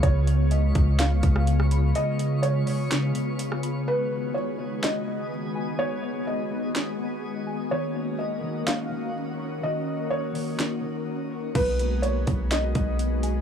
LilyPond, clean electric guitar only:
\new Staff \with { instrumentName = "Clean electric guitar" } { \time 4/4 \key b \lydian \tempo 4 = 125 <cis b''>4. cis8 cis8 cis4 b''8 | cis4. cis8 cis8 cis4 b''8 | b4. b8 b8 b4 gis''8 | b4. b8 b8 b4 gis''8 |
dis4. dis8 dis8 dis4 cis'''8 | dis4. dis8 dis8 dis4 cis'''8 | b4. b8 b8 b4 gis''8 | }